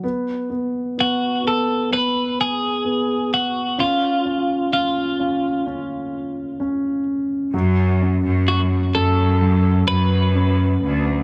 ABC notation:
X:1
M:4/4
L:1/16
Q:1/4=64
K:F#m
V:1 name="Clean electric guitar"
z4 F2 A2 B2 G4 F2 | ^E4 E8- E2 z2 | z4 F2 A4 B6 |]
V:2 name="Grand piano"
B,2 B,2 B,2 B,2 B,4 B,4 | C2 C2 C2 C2 C4 C4 | F,2 C2 F,2 C2 F,4 C4 |]
V:3 name="Cello section" clef=bass
z16 | z16 | F,,3 F,,3 F,,4 F,,4 D,,2 |]